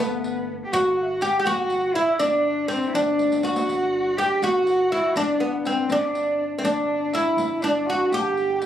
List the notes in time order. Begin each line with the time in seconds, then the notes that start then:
Already playing: B3 B4
0.00 G1 B3
0.24 riq
0.65 G4
0.71 G1 F#4 F#5, riq
0.96 F#5
1.03 E5
1.10 F#5
1.21 G4, riq
1.40 G4
1.44 G1 F#4 F#5, riq
1.70 riq
1.94 E4 E5
2.20 G1 D4 D5, riq
2.28 E5
2.35 D5
2.68 C4 C5, riq
2.83 E4, riq
2.94 G1 D4 D5, riq
3.02 E5
3.10 D5
3.19 riq
3.32 riq
3.37 G5
3.42 F#4 F#5, riq
3.56 riq
3.67 G1, riq
4.17 G4, riq
4.41 G1 F#4 F#5, riq
4.66 F#5, riq
4.90 E4 E5
5.15 G1 D4 D5, riq
5.39 B3 B4
5.65 C4, riq
5.89 G1 D4 D5, riq
6.15 riq
6.57 C4 E5
6.62 G1 D4 D5, riq
7.12 E4 E5, riq
7.37 G1, riq
7.61 D4 D5, riq
7.86 F#4 F#5
7.90 F#4
8.10 G1 G4 G5, riq
8.19 A5
8.26 G5
8.37 riq
8.62 riq